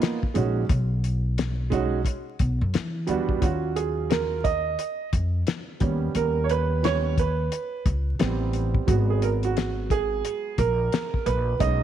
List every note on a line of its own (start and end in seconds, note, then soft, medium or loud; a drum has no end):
0.00 0.17 A#3 medium
0.00 0.18 B3 medium
0.00 0.18 D#4 medium
0.00 0.19 F4 medium
0.00 snare loud
0.00 closed hi-hat medium
0.23 kick medium
0.34 0.64 A#1 medium
0.34 0.61 G#3 medium
0.34 0.61 C#4 medium
0.34 0.62 D#4 medium
0.34 0.62 F#4 medium
0.34 closed hi-hat medium
0.69 2.02 B1 medium
0.69 kick loud
0.69 closed hi-hat medium
1.04 closed hi-hat medium
1.38 snare loud
1.38 closed hi-hat medium
1.70 1.97 G#3 medium
1.70 1.98 C#4 medium
1.70 1.98 D#4 medium
1.70 1.99 F#4 medium
1.70 kick medium
1.70 closed hi-hat medium
2.05 kick medium
2.05 closed hi-hat medium
2.39 2.57 B1 medium
2.39 kick medium
2.39 closed hi-hat medium
2.61 2.72 F#2 medium
2.74 3.10 E3 medium
2.74 snare loud
2.74 closed hi-hat medium
3.07 3.37 E2 medium
3.07 3.41 G3 medium
3.07 3.42 B3 medium
3.07 3.42 D4 medium
3.07 3.40 F#4 medium
3.07 closed hi-hat medium
3.29 kick medium
3.41 4.75 D#2 medium
3.41 4.40 F#3 medium
3.41 4.40 C#4 medium
3.41 4.40 F4 medium
3.41 3.77 F#4 medium
3.41 kick loud
3.41 closed hi-hat medium
3.76 4.11 G#4 medium
3.76 closed hi-hat medium
4.10 4.42 A#4 medium
4.10 snare loud
4.10 closed hi-hat medium
4.44 5.08 D#5 medium
4.44 kick loud
4.44 closed hi-hat medium
4.79 closed hi-hat medium
5.13 5.41 F2 medium
5.13 kick medium
5.13 closed hi-hat medium
5.47 snare loud
5.47 closed hi-hat medium
5.80 6.09 D#2 loud
5.80 6.81 G3 medium
5.80 6.82 B3 soft
5.80 6.82 C#4 medium
5.80 kick medium
5.80 closed hi-hat medium
6.15 7.47 D#2 medium
6.15 6.45 A#4 medium
6.15 closed hi-hat medium
6.44 6.49 C#5 medium
6.49 6.85 B4 medium
6.49 closed hi-hat medium
6.83 7.14 G3 soft
6.83 7.14 B3 soft
6.83 7.14 C#4 medium
6.83 7.19 C#5 loud
6.83 snare loud
6.83 closed hi-hat medium
7.18 7.82 B4 medium
7.18 kick medium
7.18 closed hi-hat medium
7.52 closed hi-hat medium
7.86 8.14 C#2 medium
7.86 kick medium
7.86 closed hi-hat medium
8.19 8.76 A1 loud
8.19 8.84 G3 medium
8.19 8.85 B3 medium
8.19 8.85 C4 medium
8.19 snare loud
8.19 closed hi-hat medium
8.53 closed hi-hat medium
8.74 kick medium
8.87 10.20 G#1 loud
8.87 11.56 F#3 medium
8.87 11.56 G#3 medium
8.87 11.56 B3 medium
8.87 8.94 F#4 medium
8.87 kick loud
8.87 closed hi-hat medium
9.10 9.23 G#4 medium
9.22 9.28 A#4 medium
9.22 closed hi-hat medium
9.43 9.92 F#4 medium
9.43 closed hi-hat soft
9.57 snare loud
9.57 closed hi-hat medium
9.90 10.55 G#4 loud
9.90 kick loud
9.90 closed hi-hat medium
10.25 closed hi-hat medium
10.58 10.86 A#1 medium
10.58 11.28 A#4 loud
10.58 kick medium
10.58 closed hi-hat medium
10.92 snare loud
10.92 closed hi-hat medium
11.14 kick medium
11.26 11.54 A#1 loud
11.26 11.58 B4 medium
11.26 closed hi-hat medium
11.59 11.83 B1 loud
11.59 11.83 G#3 medium
11.59 11.83 C#4 soft
11.59 11.83 D#4 medium
11.59 11.83 D#5 loud
11.59 kick loud
11.59 closed hi-hat medium